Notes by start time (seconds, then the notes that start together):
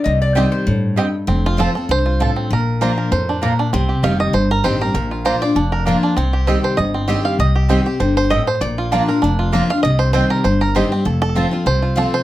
0.04 C2 C3 D#5
0.22 D5
0.35 D#3 G3 C4 G4 C5 D#5 G5
0.52 C5
0.67 G2 A2
0.96 G2 C4 G4 D#5 G5
1.27 F1 F2 C4
1.46 F4
1.57 F3 A3 C4 F4 A4 C5 A5
1.75 C4 F4 A4
1.89 C2 G2 C5
2.06 F4
2.20 A2 C4 F4 A4 C5 A5
2.36 C4
2.50 A#1 A#2 A#4
2.81 F3 A#3 D4 F4 C5 D5 A#5
2.98 A#4
3.12 F2 A2 C5
3.29 D4
3.42 A#2 A#3 F4 A#4 D5 A#5
3.59 D4
3.73 C2 C3 C4
3.89 G4
4.03 F1 D#3 G3 C4 G4 D#5 F5 G5
4.20 D#5
4.33 G1 G2 C5
4.51 A#4
4.64 A1 D#3 G3 C4 G4 C5 D#5 G5
4.81 C4 G4 A#4
4.94 A#1 A#2 A#4
5.11 F4
5.25 F3 A#3 D4 F4 C5 D5 A#5
5.42 D4 F4 D5
5.55 F1 F2 D4
5.72 A#4
5.85 F3 A#3 D4 F4 A#4 D5 A#5
6.03 D4
6.17 C2 C3 C4
6.33 G4
6.47 D#3 G3 C4 G4 C5 D#5 G5
6.64 C5
6.77 G1 G2 D#5
6.94 C4
7.08 D#3 G3 C4 G4 D#5 G5
7.25 F5
7.39 C2 C3 D#5
7.55 G4
7.69 D#3 G3 C4 G4 C5 D#5 G5
7.86 C4 G4
8.00 G1 D3 C5
8.17 C5
8.30 A2 C4 G4 D#5 G5
8.47 C5
8.61 A#1 A#2 D5
8.78 F4
8.92 F3 A#3 D4 F4 D5 A#5
9.08 D4 F4 A#4
9.22 F1 F2 D4
9.39 F4
9.52 F3 A#3 D4 F4 A#4 D5 A#5
9.70 D4 F4 F5
9.83 C2 C3 D#5
9.99 C5
10.13 D#3 G3 C4 G4 C5 D#5 G5
10.30 A#4
10.44 G1 G2 C5
10.61 A#4
10.75 D#3 G3 C4 G4 C5 D#5 G5
10.92 C4 G4
11.05 F1 F2 A4
11.22 A4
11.35 F3 A3 C4 F4 C5 A5
11.51 C4 F4
11.66 C2 C3 C5
11.82 F4
11.96 F3 A3 C4 F4 A4 C5 A5
12.14 C5